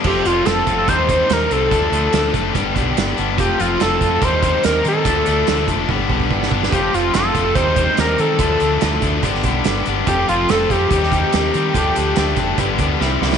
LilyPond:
<<
  \new Staff \with { instrumentName = "Analog synth lead" } { \time 4/4 \key f \mixolydian \tempo 4 = 144 g'8 f'8 a'8. a'16 c''8 c''8 bes'8 a'8~ | a'4. r2 r8 | g'8 f'8 a'8. a'16 c''8 c''8 bes'8 a'8~ | a'4. r2 r8 |
g'8 f'8 a'8. a'16 c''8 c''8 bes'8 a'8~ | a'4. r2 r8 | g'8 f'8 a'8 g'2~ g'8~ | g'2. r4 | }
  \new Staff \with { instrumentName = "Overdriven electric guitar" } { \time 4/4 \key f \mixolydian <f c' f' a'>8 <c' f' a'>8 <f c' f' a'>8 <c' f' a'>8 <g c' ees' g'>8 <c' ees' g'>8 <g c' ees' g'>4 | <f a d' a'>8 <a d' a'>8 <f a d' a'>8 <a d' a'>8 <b d' g'>8 <d' g'>8 <b d' g'>4 | <f c' f' a'>8 <c' f' a'>8 <f c' f' a'>8 <c' f' a'>8 <g c' ees' g'>8 <c' ees' g'>8 <g c' ees' g'>4 | <f a d' a'>8 <a d' a'>8 <f a d' a'>8 <a d' a'>8 <b d' g'>8 <d' g'>8 <b d' g'>4 |
<f c' f' a'>8 <c' f' a'>8 <f c' f' a'>8 <c' f' a'>8 <g c' ees' g'>8 <c' ees' g'>8 <g c' ees' g'>4 | <f a d' a'>8 <a d' a'>8 <f a d' a'>8 <a d' a'>8 <b d' g'>8 <d' g'>8 <b d' g'>4 | <f c' f' a'>8 <c' f' a'>8 <f c' f' a'>8 <c' f' a'>8 <g c' ees' g'>8 <c' ees' g'>8 <g c' ees' g'>4 | <f a d' a'>8 <a d' a'>8 <f a d' a'>8 <a d' a'>8 <b d' g'>8 <d' g'>8 <e c' e' g'>4 | }
  \new Staff \with { instrumentName = "Overdriven electric guitar" } { \time 4/4 \key f \mixolydian <f a c' f'>8 <a c' f'>8 <f a c' f'>8 <a c' f'>8 <ees g c' ees'>8 <g c' ees'>4 <g c' ees'>8 | <d f a d'>8 <f a d'>8 <d f a d'>8 <f a d'>8 <g, d g b d'>8 <g b d'>4 <g b d'>8 | <f a c' f'>8 <a c' f'>8 <f a c' f'>8 <a c' f'>8 <ees g c' ees'>8 <g c' ees'>4 <g c' ees'>8 | <d f a d'>8 <f a d'>8 <d f a d'>8 <f a d'>8 <g, d g b d'>8 <g b d'>4 <g b d'>8 |
<f a c' f'>8 <a c' f'>8 <f a c' f'>8 <a c' f'>8 <ees g c' ees'>8 <g c' ees'>4 <g c' ees'>8 | <d f a d'>8 <f a d'>8 <d f a d'>8 <f a d'>8 <g, d g b d'>8 <g b d'>4 <g b d'>8 | <f a c' f'>8 <a c' f'>8 <f a c' f'>8 <a c' f'>8 <ees g c' ees'>8 <g c' ees'>4 <g c' ees'>8 | <d f a d'>8 <f a d'>8 <d f a d'>8 <f a d'>8 <g, d g b d'>8 <g b d'>8 <c g c' e'>8 <g c' e'>8 | }
  \new Staff \with { instrumentName = "Fingered electric bass" } { \clef bass \time 4/4 \key f \mixolydian f,,8 f,,8 f,,8 f,,8 ees,4 ees,8 c,8 | d,8 d,8 d,8 ges,,8 g,,8 b,,8 g,,8 g,,8 | f,,8 f,,8 f,,8 f,8 ees,4 ees,8 ees8 | d,8 d,8 d,8 f,,8 g,,8 b,,8 g,,8 g,,8 |
f,,8 f,,8 f,,8 f,,8 ees,4 ees,8 ees8 | d,8 d,8 d,8 d,8 g,,8 b,,8 g,,8 g,,8 | f,,8 f,,8 f,,8 f,8 ees,4 ees,8 ees8 | d,8 d,8 d,8 f,,8 g,,8 d,8 c,8 c,8 | }
  \new DrumStaff \with { instrumentName = "Drums" } \drummode { \time 4/4 <cymc bd>8 hh8 <hh sn>8 <hh bd>8 <hh bd>8 <hh bd>8 <hh sn>8 hh8 | <hh bd>8 hh8 <hh sn>8 <hh bd>8 <hh bd>8 <hh bd>8 <hh sn>8 hh8 | <hh bd>8 hh8 <hh sn>8 <hh bd>8 <hh bd>8 <hh bd>8 <hh sn>8 hh8 | <hh bd>8 hh8 <hh sn>8 <hh bd>8 bd16 bd16 bd16 bd16 bd16 sn16 bd16 sn16 |
<hh bd>8 hh8 <hh sn>8 <hh bd>8 <hh bd>8 <hh bd>8 <hh sn>8 hh8 | <hh bd>8 hh8 <hh sn>8 <hh bd>8 <hh bd>16 sn16 <hh bd>8 <hh sn>8 hh8 | <hh bd>8 hh8 <hh sn>8 <hh bd>8 <hh bd>16 sn16 <hh bd>8 <hh sn>8 hh8 | <hh bd>8 hh8 <hh sn>8 <hh bd>8 <hh bd>8 <hh bd>8 sn8 sn16 sn16 | }
>>